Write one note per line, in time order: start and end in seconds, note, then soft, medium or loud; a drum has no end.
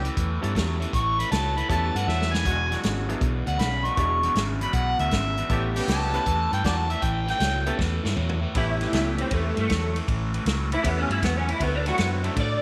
0.04 0.15 A2 medium
0.04 0.16 E3 medium
0.04 closed hi-hat medium
0.16 0.37 E2 medium
0.16 0.40 A2 medium
0.16 0.40 E3 medium
0.16 kick loud
0.16 closed hi-hat medium
0.41 0.52 G2 medium
0.41 0.53 A2 medium
0.41 0.54 E3 medium
0.41 0.90 G3 medium
0.41 0.90 B3 medium
0.41 0.90 C#4 medium
0.41 0.90 E4 medium
0.41 0.90 A4 medium
0.41 closed hi-hat medium
0.55 0.84 E2 medium
0.55 0.78 A2 medium
0.55 0.78 F#3 medium
0.55 kick medium
0.55 snare loud
0.55 closed hi-hat medium
0.80 0.91 A2 medium
0.80 0.92 E3 medium
0.80 closed hi-hat medium
0.93 1.22 A1 loud
0.93 1.16 A2 medium
0.93 1.16 E3 medium
0.93 1.22 C#6 loud
0.93 kick loud
0.93 closed hi-hat medium
1.19 1.30 A2 medium
1.19 1.30 E3 medium
1.19 1.31 B5 loud
1.19 closed hi-hat medium
1.31 1.61 C#2 medium
1.31 1.54 A2 medium
1.31 1.55 F#3 medium
1.31 1.60 A5 loud
1.31 snare loud
1.31 closed hi-hat medium
1.57 1.68 A2 medium
1.57 1.68 E3 medium
1.57 1.69 B5 medium
1.57 closed hi-hat medium
1.69 1.89 E2 medium
1.69 1.93 A2 medium
1.69 1.93 E3 loud
1.69 1.92 G3 medium
1.69 1.92 B3 medium
1.69 1.92 C#4 medium
1.69 1.93 E4 medium
1.69 1.93 A4 medium
1.69 1.98 A5 loud
1.69 kick loud
1.69 closed hi-hat loud
1.95 2.04 G2 medium
1.95 2.06 A2 medium
1.95 2.07 E3 medium
1.95 2.10 F#5 medium
1.95 closed hi-hat medium
2.07 2.47 E2 medium
2.07 2.30 A2 medium
2.07 2.31 F#3 medium
2.07 2.35 E5 loud
2.07 snare medium
2.22 snare medium
2.33 2.44 A2 medium
2.33 2.44 E3 medium
2.33 2.70 G#5 loud
2.33 snare medium
2.45 2.74 E1 loud
2.45 2.69 E2 medium
2.45 2.69 B2 medium
2.45 2.61 F#3 medium
2.45 2.61 G#3 medium
2.45 2.61 D4 medium
2.45 2.61 F#4 medium
2.45 kick loud
2.45 closed hi-hat medium
2.71 2.81 E2 medium
2.71 2.82 B2 medium
2.71 3.15 F#3 medium
2.71 3.14 G#3 medium
2.71 3.14 D4 medium
2.71 3.15 F#4 medium
2.71 snare soft
2.71 closed hi-hat medium
2.83 3.13 G#1 medium
2.83 3.06 E2 medium
2.83 3.07 C#3 medium
2.83 snare loud
2.83 closed hi-hat medium
3.08 3.20 E2 medium
3.08 3.20 B2 medium
3.08 3.20 F#3 medium
3.08 3.20 B3 medium
3.08 3.20 D4 medium
3.08 3.20 E4 medium
3.08 3.20 G#4 medium
3.08 closed hi-hat medium
3.21 3.41 B1 medium
3.21 3.44 E2 medium
3.21 3.45 B2 medium
3.21 kick loud
3.21 closed hi-hat medium
3.46 3.56 D2 medium
3.46 3.58 E2 medium
3.46 3.58 B2 medium
3.46 3.61 F#5 medium
3.46 closed hi-hat medium
3.59 3.88 B1 medium
3.59 3.83 E2 medium
3.59 3.83 C#3 medium
3.59 3.87 B5 medium
3.59 kick medium
3.59 snare loud
3.59 closed hi-hat medium
3.85 3.96 E2 medium
3.85 3.96 B2 medium
3.85 4.34 C#6 loud
3.85 closed hi-hat soft
3.97 4.27 E1 loud
3.97 4.21 E2 medium
3.97 4.21 B2 medium
3.97 5.04 F#3 medium
3.97 5.04 B3 medium
3.97 5.05 D4 medium
3.97 5.05 E4 medium
3.97 5.05 G#4 medium
3.97 kick loud
3.97 closed hi-hat medium
4.23 4.34 E2 medium
4.23 4.35 B2 medium
4.23 closed hi-hat medium
4.35 4.65 G#1 medium
4.35 4.59 E2 medium
4.35 4.59 C#3 medium
4.35 snare loud
4.35 closed hi-hat medium
4.61 4.72 E2 medium
4.61 4.72 B2 medium
4.61 4.76 B5 loud
4.61 closed hi-hat medium
4.73 4.94 B1 medium
4.73 4.97 E2 medium
4.73 4.97 B2 medium
4.73 4.99 F#5 loud
4.73 kick loud
4.73 closed hi-hat medium
4.99 5.09 D2 medium
4.99 5.10 E2 medium
4.99 5.11 B2 medium
4.99 5.74 E5 loud
4.99 closed hi-hat medium
5.11 5.41 G#1 medium
5.11 5.35 E2 medium
5.11 5.35 C#3 medium
5.11 kick medium
5.11 snare medium
5.11 closed hi-hat medium
5.37 5.48 E2 medium
5.37 5.49 B2 medium
5.37 closed hi-hat medium
5.49 5.79 A1 medium
5.49 5.73 A2 medium
5.49 5.73 E3 medium
5.49 6.08 G3 medium
5.49 5.66 G3 medium
5.49 6.08 B3 medium
5.49 5.66 B3 medium
5.49 6.09 C#4 medium
5.49 5.66 C#4 medium
5.49 6.09 E4 medium
5.49 5.66 G4 medium
5.49 6.09 A4 medium
5.49 kick loud
5.49 closed hi-hat medium
5.76 5.87 A2 medium
5.76 5.87 E3 medium
5.76 6.19 G3 medium
5.76 6.19 B3 medium
5.76 6.19 C#4 medium
5.76 6.19 G4 loud
5.76 closed hi-hat medium
5.88 6.17 C#2 medium
5.88 6.12 A2 medium
5.88 6.12 F#3 medium
5.88 6.51 A5 loud
5.88 snare loud
5.88 closed hi-hat medium
6.13 6.25 A2 medium
6.13 6.25 E3 medium
6.13 6.25 G3 medium
6.13 6.25 B3 medium
6.13 6.25 C#4 medium
6.13 6.25 E4 medium
6.13 6.25 B4 medium
6.13 closed hi-hat medium
6.26 6.46 E2 medium
6.26 6.50 A2 medium
6.26 6.50 E3 medium
6.26 kick loud
6.26 closed hi-hat medium
6.52 6.61 G2 medium
6.52 6.63 A2 medium
6.52 6.63 E3 medium
6.52 6.65 G5 loud
6.52 closed hi-hat medium
6.64 6.94 E2 medium
6.64 6.88 A2 medium
6.64 6.88 F#3 medium
6.64 6.74 D5 medium
6.64 6.74 F#5 medium
6.64 6.93 A5 loud
6.64 kick medium
6.64 snare loud
6.64 closed hi-hat medium
6.89 7.01 A2 medium
6.89 7.01 E3 medium
6.89 7.05 E5 loud
6.89 closed hi-hat medium
7.02 7.32 A1 loud
7.02 7.25 A2 medium
7.02 7.25 E3 medium
7.02 7.28 G5 medium
7.02 kick loud
7.02 closed hi-hat medium
7.27 7.38 A2 medium
7.27 7.39 E3 medium
7.27 7.66 G5 loud
7.27 snare soft
7.27 closed hi-hat soft
7.39 7.70 C#2 medium
7.39 7.63 A2 medium
7.39 7.64 F#3 medium
7.39 snare loud
7.39 closed hi-hat medium
7.66 7.77 A2 medium
7.66 7.78 E3 medium
7.66 7.77 G3 medium
7.66 7.78 B3 medium
7.66 7.78 C#4 medium
7.66 7.78 E4 medium
7.66 7.78 A4 medium
7.66 closed hi-hat medium
7.78 7.99 E2 medium
7.78 8.02 A2 medium
7.78 8.02 E3 medium
7.78 kick loud
7.78 snare medium
8.04 8.14 G2 medium
8.04 8.15 A2 medium
8.04 8.16 E3 medium
8.04 snare medium
8.16 8.46 E2 medium
8.16 8.40 A2 medium
8.16 8.40 F#3 medium
8.16 mid tom medium
8.29 floor tom medium
8.41 8.53 A2 medium
8.41 8.53 E3 medium
8.54 8.84 A1 loud
8.54 8.78 A2 medium
8.54 8.78 E3 medium
8.54 8.78 G3 medium
8.54 8.71 G3 medium
8.54 8.79 A3 medium
8.54 8.71 A3 medium
8.54 8.79 B3 soft
8.54 8.71 B3 medium
8.54 8.71 C#4 medium
8.54 8.79 C#4 medium
8.54 8.79 E4 medium
8.54 9.18 E4 loud
8.54 8.71 G4 medium
8.54 kick loud
8.54 ride medium
8.81 8.92 A2 medium
8.81 8.92 E3 medium
8.81 9.25 G3 medium
8.81 9.24 A3 medium
8.81 9.24 B3 medium
8.81 9.24 C#4 medium
8.81 9.25 G4 medium
8.81 snare soft
8.81 ride medium
8.93 9.22 C#2 medium
8.93 9.16 A2 medium
8.93 9.17 F#3 medium
8.93 9.52 G3 medium
8.93 9.52 A3 medium
8.93 9.52 B3 medium
8.93 9.53 C#4 medium
8.93 9.53 E4 medium
8.93 snare loud
8.93 ride medium
9.18 9.29 A2 medium
9.18 9.30 E3 medium
9.18 9.32 C4 medium
9.18 ride medium
9.31 9.51 E2 medium
9.31 9.54 A2 medium
9.31 9.55 E3 medium
9.31 9.58 A3 medium
9.31 kick loud
9.31 ride medium
9.57 9.67 G2 medium
9.57 9.68 A2 medium
9.57 9.68 E3 medium
9.57 9.96 A3 loud
9.57 ride medium
9.69 9.99 E2 medium
9.69 9.93 A2 medium
9.69 9.93 F#3 loud
9.69 kick medium
9.69 snare loud
9.69 ride medium
9.96 10.06 A2 medium
9.96 10.07 E3 medium
9.96 ride medium
10.08 10.37 A1 loud
10.08 10.31 A2 medium
10.08 10.31 E3 medium
10.08 kick loud
10.08 ride medium
10.34 10.45 A2 medium
10.34 10.45 E3 medium
10.34 ride medium
10.45 10.75 C#2 medium
10.45 10.69 A2 medium
10.45 10.70 F#3 medium
10.45 snare loud
10.45 ride medium
10.72 10.83 A2 medium
10.72 10.83 E3 medium
10.72 10.85 E4 loud
10.72 ride medium
10.83 11.04 E2 medium
10.83 11.08 A2 medium
10.83 11.08 E3 medium
10.83 11.07 G3 medium
10.83 11.07 A3 medium
10.83 11.07 B3 medium
10.83 10.99 B3 medium
10.83 11.07 C#4 medium
10.83 11.07 E4 medium
10.83 kick loud
10.83 ride loud
10.99 11.11 C#4 medium
11.09 11.19 G2 medium
11.09 11.21 A2 medium
11.09 11.21 E3 medium
11.09 11.23 E4 medium
11.09 ride medium
11.22 11.52 E2 medium
11.22 11.46 A2 medium
11.22 11.46 F#3 loud
11.22 11.36 B3 medium
11.22 kick medium
11.22 snare medium
11.22 ride medium
11.37 11.48 C#4 loud
11.47 11.59 A2 medium
11.47 11.59 E3 medium
11.47 11.61 E4 medium
11.47 ride medium
11.60 11.90 D2 loud
11.60 11.84 D3 medium
11.60 11.76 F#3 medium
11.60 11.84 A3 medium
11.60 11.75 B3 medium
11.60 11.76 C4 medium
11.60 11.76 D4 medium
11.60 11.76 E4 medium
11.60 11.76 F#4 medium
11.60 kick loud
11.60 ride medium
11.75 11.86 D4 medium
11.86 11.96 D3 medium
11.86 12.30 F#3 medium
11.86 11.98 A3 medium
11.86 12.29 C4 medium
11.86 12.29 D4 medium
11.86 12.30 E4 medium
11.86 12.30 F#4 medium
11.86 12.08 F#4 loud
11.86 snare soft
11.86 ride medium
11.98 12.28 F#2 medium
11.98 12.21 D3 medium
11.98 12.22 B3 medium
11.98 snare loud
11.98 ride medium
12.23 12.34 D3 medium
12.23 12.35 F#3 medium
12.23 12.35 A3 medium
12.23 12.36 C4 medium
12.23 12.36 D4 medium
12.23 12.36 E4 medium
12.23 ride medium
12.36 12.57 A2 medium
12.36 12.60 D3 medium
12.36 12.60 A3 medium
12.36 kick loud
12.36 ride medium
12.40 12.62 D5 loud